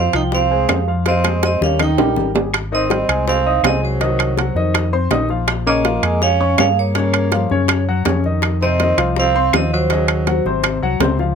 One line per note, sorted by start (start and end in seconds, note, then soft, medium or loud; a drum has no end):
0.00 0.13 C4 medium
0.00 0.15 F5 medium
0.13 0.65 C2 medium
0.13 0.44 F3 medium
0.13 0.23 D#4 medium
0.13 0.44 F4 medium
0.13 0.45 F5 medium
0.13 0.24 G5 medium
0.13 high timbale medium
0.13 claves medium
0.32 0.84 C4 medium
0.32 0.85 F5 medium
0.32 high bongo medium
0.51 0.81 G#3 medium
0.51 0.81 G#4 medium
0.51 0.81 C5 medium
0.69 1.56 F2 medium
0.69 high bongo medium
0.69 low bongo medium
0.69 high timbale medium
0.69 low timbale medium
0.69 claves medium
0.88 1.03 F3 medium
0.88 1.03 F4 medium
0.88 1.03 F5 medium
1.06 1.22 F3 medium
1.06 1.41 C4 medium
1.06 1.22 F4 medium
1.06 1.44 D#5 medium
1.06 1.22 F5 medium
1.06 high bongo medium
1.06 high timbale medium
1.24 1.55 G#3 medium
1.24 1.55 G#4 medium
1.24 1.55 C5 medium
1.24 high bongo medium
1.24 high timbale medium
1.24 claves medium
1.43 1.61 C4 medium
1.43 1.61 D#5 medium
1.43 high bongo medium
1.43 high timbale medium
1.43 low timbale medium
1.61 1.96 D#2 medium
1.61 1.76 G3 medium
1.61 1.79 C#4 medium
1.61 1.77 G4 medium
1.61 1.77 A#4 medium
1.61 1.80 F5 medium
1.61 low bongo medium
1.79 1.95 D#3 medium
1.79 1.95 D#4 medium
1.79 2.33 D#4 medium
1.79 1.95 D#5 medium
1.79 2.33 G5 medium
1.79 low bongo medium
1.79 high timbale medium
1.79 claves medium
1.98 2.15 A#1 medium
1.98 2.28 G3 medium
1.98 2.28 G4 medium
1.98 2.28 A#4 medium
1.98 low bongo medium
1.98 high timbale medium
2.16 3.03 G#1 medium
2.16 low bongo medium
2.35 2.50 G3 medium
2.35 2.50 G4 medium
2.35 2.50 G#4 medium
2.35 low bongo medium
2.35 low timbale medium
2.54 high bongo medium
2.54 high timbale medium
2.54 claves medium
2.72 2.87 D#3 medium
2.72 3.25 C4 medium
2.72 2.87 D#4 medium
2.72 2.87 D#5 medium
2.72 3.30 D#5 medium
2.90 3.06 G3 medium
2.90 3.06 G4 medium
2.90 3.06 G5 medium
2.90 high bongo medium
2.90 high timbale medium
2.90 low timbale medium
3.09 3.60 C2 medium
3.09 3.39 G#3 medium
3.09 3.39 G#4 medium
3.09 3.39 G#5 medium
3.09 high timbale medium
3.09 claves medium
3.28 3.62 C4 medium
3.28 3.66 F5 loud
3.28 high bongo medium
3.46 3.61 D#4 medium
3.46 3.61 D#5 medium
3.46 3.61 D#6 medium
3.63 4.50 C2 medium
3.63 3.95 G#3 medium
3.63 3.81 C4 medium
3.63 3.95 G#4 medium
3.63 3.83 D#5 medium
3.63 3.95 G#5 medium
3.63 high bongo medium
3.63 low bongo medium
3.63 high timbale medium
3.63 low timbale medium
3.63 claves medium
3.83 4.71 F#3 medium
3.83 4.90 C5 medium
4.01 4.31 D#3 medium
4.01 4.31 D#4 medium
4.01 4.31 D#5 medium
4.01 high bongo medium
4.01 high timbale medium
4.19 high bongo soft
4.19 high timbale medium
4.19 claves medium
4.37 4.53 F#3 medium
4.37 4.53 F#4 medium
4.37 4.53 F#5 medium
4.37 high bongo medium
4.37 high timbale medium
4.37 low timbale medium
4.55 5.07 F2 medium
4.55 4.86 D#3 medium
4.55 4.86 D#4 medium
4.55 4.87 D#5 medium
4.55 high bongo soft
4.74 high bongo medium
4.74 high timbale medium
4.74 claves medium
4.93 5.08 C4 medium
4.93 5.08 C5 medium
4.93 5.08 C6 medium
5.11 5.97 A#1 medium
5.11 5.26 D#3 medium
5.11 5.26 D#4 medium
5.11 5.27 D#5 medium
5.11 high bongo medium
5.11 low bongo medium
5.11 high timbale medium
5.11 low timbale medium
5.29 5.60 F3 medium
5.29 5.60 F4 medium
5.29 5.60 F5 medium
5.29 high bongo soft
5.48 high bongo medium
5.48 high timbale medium
5.48 claves medium
5.66 5.82 C#3 medium
5.66 6.18 A#3 medium
5.66 5.82 C#4 medium
5.66 5.82 C#5 medium
5.66 6.18 D#5 medium
5.85 6.00 F3 medium
5.85 6.00 F4 medium
5.85 6.00 F5 medium
5.85 high bongo medium
5.85 high timbale medium
5.85 low timbale medium
6.03 6.54 F2 medium
6.03 6.34 G#3 medium
6.03 6.34 G#4 medium
6.03 6.34 G#5 medium
6.03 high timbale medium
6.03 claves medium
6.22 6.57 C#4 medium
6.22 6.59 F5 loud
6.22 high bongo medium
6.40 6.55 C#4 medium
6.40 6.55 C#5 medium
6.40 6.56 C#6 medium
6.58 7.45 G2 medium
6.58 6.89 A#3 medium
6.58 6.68 C#4 medium
6.58 6.89 G#4 medium
6.58 6.68 F5 loud
6.58 6.89 G#5 medium
6.58 high bongo medium
6.58 low bongo medium
6.58 high timbale medium
6.58 low timbale medium
6.58 claves medium
6.78 7.84 A#3 medium
6.78 7.85 C#5 medium
6.95 7.26 C#3 medium
6.95 7.26 C#4 medium
6.95 7.26 C#5 medium
6.95 high bongo medium
6.95 high timbale medium
7.13 high bongo soft
7.13 high timbale medium
7.13 claves medium
7.32 7.48 F3 medium
7.32 7.48 F4 medium
7.32 7.48 F5 medium
7.32 high bongo medium
7.32 high timbale medium
7.32 low timbale medium
7.50 8.02 F#2 medium
7.50 7.81 C#3 medium
7.50 7.81 C#4 medium
7.50 7.81 C#5 medium
7.50 high bongo soft
7.68 high bongo medium
7.68 high timbale medium
7.68 claves medium
7.89 8.03 F#3 medium
7.89 8.03 F#4 medium
7.89 8.03 F#5 medium
8.05 8.92 F2 medium
8.05 8.21 C#3 medium
8.05 8.22 C#4 medium
8.05 8.22 C#5 medium
8.05 high bongo medium
8.05 low bongo medium
8.05 high timbale medium
8.05 low timbale medium
8.24 8.55 D#3 medium
8.24 8.55 D#4 medium
8.24 8.55 D#5 medium
8.24 high bongo soft
8.42 high bongo medium
8.42 high timbale medium
8.42 claves medium
8.62 8.77 C3 medium
8.62 9.13 C4 medium
8.62 8.77 C4 medium
8.62 8.77 C5 medium
8.62 9.19 D#5 loud
8.80 8.95 D#3 medium
8.80 8.95 D#4 medium
8.80 8.96 D#5 medium
8.80 high bongo medium
8.80 high timbale medium
8.80 low timbale medium
8.97 9.49 C2 medium
8.97 9.28 F3 medium
8.97 9.28 F4 medium
8.97 9.28 F5 medium
8.97 high timbale medium
8.97 claves medium
9.16 9.52 C4 loud
9.16 9.56 F5 loud
9.16 high bongo medium
9.35 9.50 C4 medium
9.35 9.50 C5 medium
9.35 9.50 C6 medium
9.53 10.39 D#2 medium
9.53 9.84 F3 medium
9.53 9.72 C4 medium
9.53 9.84 F4 medium
9.53 9.73 D#5 loud
9.53 9.84 F5 medium
9.53 high bongo medium
9.53 low bongo medium
9.53 high timbale medium
9.53 low timbale medium
9.53 claves medium
9.73 10.79 F#3 medium
9.73 10.79 C5 medium
9.90 10.21 C#3 medium
9.90 10.21 C#4 medium
9.90 10.21 D#5 medium
9.90 high bongo medium
9.90 high timbale medium
10.08 high bongo soft
10.08 high timbale medium
10.08 claves medium
10.27 10.42 F#3 medium
10.27 10.43 F#4 medium
10.27 10.43 F#5 medium
10.27 high bongo medium
10.27 high timbale medium
10.27 low timbale medium
10.45 10.79 G#1 medium
10.45 10.76 C3 medium
10.45 10.76 C4 medium
10.45 10.76 C5 medium
10.45 high bongo soft
10.64 high bongo medium
10.64 high timbale medium
10.64 claves medium
10.82 10.99 C2 medium
10.82 10.97 F#3 medium
10.82 10.98 F#4 medium
10.82 10.98 F#5 medium
11.00 11.35 C#2 medium
11.00 11.16 C3 medium
11.00 11.16 C4 medium
11.00 11.16 C5 medium
11.00 high bongo medium
11.00 low bongo medium
11.00 high timbale medium
11.00 low timbale medium
11.19 11.35 F3 medium
11.19 11.35 F4 medium
11.19 11.35 F5 medium
11.19 high bongo soft